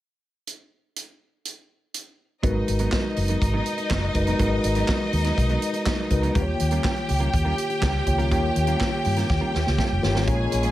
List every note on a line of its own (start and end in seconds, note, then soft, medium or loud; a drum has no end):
0.47 closed hi-hat soft
0.96 closed hi-hat medium
1.45 closed hi-hat soft
1.94 closed hi-hat medium
2.43 2.61 G#1 loud
2.43 2.58 F#3 medium
2.43 3.22 G#3 medium
2.43 2.55 B3 medium
2.43 3.22 D#4 medium
2.43 2.54 D#4 medium
2.43 6.32 D#4 medium
2.43 3.22 F#4 medium
2.43 3.23 A#4 medium
2.43 2.54 A#4 medium
2.43 3.23 B4 medium
2.43 6.32 D#5 medium
2.43 kick loud
2.43 closed hi-hat medium
2.55 muted clean electric guitar stroke medium
2.68 2.86 G#1 medium
2.68 muted clean electric guitar stroke soft
2.68 closed hi-hat medium
2.79 2.91 F#3 soft
2.79 2.91 B3 soft
2.79 2.92 D#4 medium
2.79 2.91 A#4 medium
2.79 closed hi-hat soft
2.92 3.07 F#3 medium
2.92 3.05 B3 medium
2.92 3.04 D#4 medium
2.92 3.04 A#4 medium
2.92 kick loud
2.92 snare medium
2.92 clap medium
3.05 muted clean electric guitar stroke soft
3.16 3.35 F#1 medium
3.16 muted clean electric guitar stroke soft
3.16 open hi-hat medium
3.28 3.40 F#3 soft
3.28 3.41 B3 soft
3.28 3.41 D#4 soft
3.28 3.41 A#4 medium
3.28 closed hi-hat soft
3.42 3.59 G#1 medium
3.42 kick loud
3.42 closed hi-hat medium
3.54 3.65 F#3 soft
3.54 3.65 B3 medium
3.54 3.65 D#4 medium
3.54 3.66 A#4 medium
3.66 muted clean electric guitar stroke soft
3.66 closed hi-hat medium
3.78 muted clean electric guitar stroke soft
3.78 closed hi-hat soft
3.90 4.08 F#1 medium
3.90 4.05 F#3 medium
3.90 4.03 B3 medium
3.90 4.02 D#4 medium
3.90 4.02 A#4 medium
3.90 kick medium
3.90 snare loud
3.90 clap medium
4.03 muted clean electric guitar stroke soft
4.14 4.32 F#1 medium
4.14 4.34 G#3 medium
4.14 4.35 D#4 medium
4.14 4.35 F#4 medium
4.14 4.35 A#4 medium
4.14 4.35 B4 medium
4.14 muted clean electric guitar stroke soft
4.14 kick medium
4.14 closed hi-hat medium
4.27 4.38 F#3 soft
4.27 4.39 B3 medium
4.27 4.39 D#4 medium
4.27 4.39 A#4 medium
4.27 closed hi-hat soft
4.38 4.57 G#1 loud
4.38 4.54 F#3 medium
4.38 5.18 G#3 medium
4.38 4.52 B3 medium
4.38 5.18 D#4 medium
4.38 4.51 D#4 medium
4.38 5.18 F#4 medium
4.38 5.18 A#4 medium
4.38 4.51 A#4 medium
4.38 5.19 B4 medium
4.38 kick loud
4.38 closed hi-hat medium
4.52 muted clean electric guitar stroke soft
4.64 4.82 G#1 medium
4.64 muted clean electric guitar stroke soft
4.64 closed hi-hat medium
4.75 4.87 F#3 soft
4.75 4.88 B3 soft
4.75 4.88 D#4 medium
4.75 4.88 A#4 medium
4.75 closed hi-hat soft
4.88 5.03 F#3 medium
4.88 5.00 B3 medium
4.88 5.00 D#4 medium
4.88 4.99 A#4 medium
4.88 kick loud
4.88 snare medium
4.88 clap medium
5.01 muted clean electric guitar stroke soft
5.13 5.30 D#2 medium
5.13 muted clean electric guitar stroke soft
5.13 open hi-hat medium
5.24 5.36 F#3 soft
5.24 5.37 B3 soft
5.24 5.37 D#4 medium
5.24 5.37 A#4 medium
5.24 snare soft
5.24 closed hi-hat soft
5.38 5.55 B1 medium
5.38 kick loud
5.38 closed hi-hat medium
5.49 5.61 F#3 soft
5.49 5.61 B3 medium
5.49 5.61 D#4 medium
5.49 5.62 A#4 medium
5.49 closed hi-hat soft
5.62 muted clean electric guitar stroke soft
5.62 closed hi-hat medium
5.74 muted clean electric guitar stroke soft
5.74 closed hi-hat soft
5.86 6.01 F#3 medium
5.86 5.98 B3 medium
5.86 5.98 D#4 medium
5.86 5.97 A#4 medium
5.86 kick loud
5.86 snare loud
5.86 clap medium
5.98 muted clean electric guitar stroke soft
6.10 6.28 C#2 medium
6.10 6.30 G#3 medium
6.10 6.31 D#4 medium
6.10 6.31 F#4 medium
6.10 6.31 A#4 medium
6.10 6.31 B4 medium
6.10 muted clean electric guitar stroke soft
6.10 kick medium
6.10 closed hi-hat medium
6.22 6.34 F#3 medium
6.22 6.35 B3 medium
6.22 6.35 D#4 medium
6.22 6.34 A#4 medium
6.22 closed hi-hat soft
6.35 6.53 D#2 medium
6.35 7.14 D#3 medium
6.35 6.50 G3 medium
6.35 7.14 A#3 medium
6.35 6.47 C#4 medium
6.35 7.14 F4 medium
6.35 6.46 F4 medium
6.35 7.15 G4 medium
6.35 10.24 G4 medium
6.35 6.46 A#4 medium
6.35 6.42 B4 medium
6.35 10.24 G5 medium
6.35 kick loud
6.35 closed hi-hat medium
6.42 7.18 C#5 medium
6.47 muted clean electric guitar stroke soft
6.59 6.78 D#2 medium
6.59 muted clean electric guitar stroke soft
6.59 closed hi-hat medium
6.71 6.82 G3 medium
6.71 6.83 C#4 medium
6.71 6.83 F4 medium
6.71 6.83 A#4 medium
6.71 closed hi-hat soft
6.83 6.99 G3 medium
6.83 6.96 C#4 medium
6.83 6.95 F4 medium
6.83 6.95 A#4 medium
6.83 kick loud
6.83 snare loud
6.83 clap medium
6.96 muted clean electric guitar stroke soft
6.96 closed hi-hat soft
7.08 7.27 C#2 medium
7.08 muted clean electric guitar stroke soft
7.08 open hi-hat medium
7.20 7.31 G3 soft
7.20 7.31 C#4 soft
7.20 7.32 F4 medium
7.20 7.32 A#4 medium
7.20 closed hi-hat soft
7.34 7.51 D#2 medium
7.34 kick loud
7.34 closed hi-hat medium
7.45 7.56 G3 soft
7.45 7.56 C#4 soft
7.45 7.57 F4 medium
7.45 7.57 A#4 medium
7.58 closed hi-hat medium
7.70 muted clean electric guitar stroke soft
7.70 closed hi-hat soft
7.81 8.00 C#2 loud
7.81 7.97 G3 medium
7.81 7.94 C#4 medium
7.81 7.94 F4 medium
7.81 7.93 A#4 medium
7.81 kick medium
7.81 snare loud
7.81 clap medium
7.94 muted clean electric guitar stroke soft
8.06 8.32 C#2 medium
8.06 8.26 D#3 medium
8.06 8.27 A#3 medium
8.06 8.27 F4 medium
8.06 8.27 G4 medium
8.06 8.27 C#5 medium
8.06 muted clean electric guitar stroke soft
8.06 kick medium
8.06 closed hi-hat medium
8.18 8.29 G3 medium
8.18 8.30 C#4 medium
8.18 8.30 F4 medium
8.18 8.30 A#4 medium
8.18 closed hi-hat soft
8.30 8.49 D#2 loud
8.30 9.10 D#3 medium
8.30 8.46 G3 medium
8.30 9.10 A#3 medium
8.30 8.43 C#4 medium
8.30 8.43 F4 medium
8.30 9.10 F4 medium
8.30 9.11 G4 medium
8.30 8.42 A#4 medium
8.30 9.11 C#5 medium
8.30 kick loud
8.30 closed hi-hat medium
8.43 muted clean electric guitar stroke medium
8.55 8.74 D#2 medium
8.55 muted clean electric guitar stroke soft
8.55 closed hi-hat medium
8.67 8.79 G3 soft
8.67 8.80 C#4 medium
8.67 8.80 F4 medium
8.67 8.80 A#4 medium
8.67 closed hi-hat soft
8.80 8.95 G3 medium
8.80 8.92 C#4 medium
8.80 8.92 F4 medium
8.80 8.91 A#4 medium
8.80 kick loud
8.80 snare medium
8.80 clap medium
8.92 muted clean electric guitar stroke soft
9.05 9.23 G2 medium
9.05 muted clean electric guitar stroke soft
9.05 open hi-hat medium
9.16 9.28 G3 soft
9.16 9.28 C#4 soft
9.16 9.29 F4 medium
9.16 9.29 A#4 medium
9.16 snare soft
9.16 closed hi-hat soft
9.30 9.39 D#2 medium
9.30 kick loud
9.30 snare medium
9.41 9.53 G3 medium
9.41 9.53 C#4 medium
9.41 9.53 F4 medium
9.41 9.54 A#4 medium
9.54 9.64 D#2 medium
9.54 snare medium
9.66 9.76 C#2 medium
9.66 muted clean electric guitar stroke soft
9.66 snare medium
9.78 9.98 G3 medium
9.78 9.90 C#4 medium
9.78 9.90 F4 medium
9.78 9.89 A#4 medium
9.78 kick loud
9.78 snare medium
9.90 10.00 F1 medium
9.90 muted clean electric guitar stroke soft
10.02 10.16 G1 medium
10.02 10.22 D#3 medium
10.02 10.23 A#3 medium
10.02 10.23 F4 medium
10.02 10.23 G4 medium
10.02 10.23 C#5 medium
10.02 muted clean electric guitar stroke soft
10.02 snare medium
10.15 10.25 G#1 medium
10.15 10.27 G3 medium
10.15 10.27 C#4 medium
10.15 10.27 F4 medium
10.15 10.27 A#4 medium
10.15 snare medium
10.27 10.45 A#1 loud
10.27 10.71 A#2 medium
10.27 10.71 G#3 medium
10.27 10.42 G#3 medium
10.27 10.71 A#3 medium
10.27 10.71 C#4 medium
10.27 10.40 C#4 medium
10.27 10.71 F4 medium
10.27 10.39 F4 medium
10.27 10.71 G#4 medium
10.27 10.38 A#4 medium
10.27 10.71 C#5 medium
10.27 10.71 G#5 medium
10.27 kick loud
10.27 closed hi-hat medium
10.40 muted clean electric guitar stroke medium
10.52 10.70 A#1 medium
10.52 muted clean electric guitar stroke soft
10.52 closed hi-hat medium
10.63 10.71 G#3 soft
10.63 10.71 C#4 medium
10.63 10.71 F4 medium
10.63 10.71 A#4 medium
10.63 closed hi-hat soft